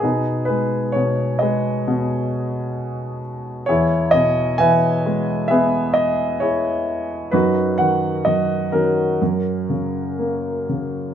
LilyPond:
<<
  \new Staff \with { instrumentName = "Grand piano" } { \time 4/4 \key fis \mixolydian \tempo 4 = 66 << { gis'8 b'8 cis''8 dis''4 r4. | cis''8 dis''8 gis''4 e''8 dis''8 cis''4 | b'8 fis''8 dis''8 ais'2 r8 | } \\ { <b dis'>4. <gis' b'>2 r8 | <e' gis'>4 <b' e''>4 <gis' b'>4 <e' gis'>4 | <dis' fis'>4. <cis' fis'>2 r8 | } >> }
  \new Staff \with { instrumentName = "Grand piano" } { \clef bass \time 4/4 \key fis \mixolydian b,8 gis8 b,8 gis8 b,2 | e,8 b,8 e8 gis8 b2 | fis,8 dis8 fis,8 dis8 fis,8 cis8 ais8 cis8 | }
>>